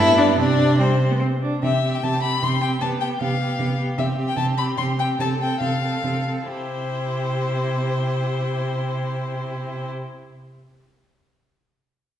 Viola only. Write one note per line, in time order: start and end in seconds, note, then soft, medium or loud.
0.00 0.40 B3 medium
0.39 0.78 C4 medium
0.79 0.87 G3 medium
1.11 1.15 B3 medium
1.20 1.28 C4 medium
1.42 1.62 D4 medium
1.62 1.83 C4 soft
1.83 2.02 C4 soft
2.02 2.22 C4 soft
2.23 2.42 C4 soft
2.42 2.61 C4 soft
2.62 2.80 C4 soft
2.81 3.00 B3 soft
3.01 3.20 B3 soft
3.21 3.40 B3 soft
3.41 3.59 B3 soft
3.59 3.78 B3 soft
3.79 3.98 B3 soft
3.98 4.17 C4 soft
4.18 4.37 C4 soft
4.38 4.57 C4 soft
4.58 4.78 C4 soft
4.78 4.98 C4 soft
4.99 5.19 C4 soft
5.21 5.40 C4 soft
5.41 5.61 C4 soft
5.61 5.82 C4 soft
5.83 6.03 C4 soft
6.04 6.26 C4 soft
6.27 6.48 C4 soft
6.49 9.87 E4 soft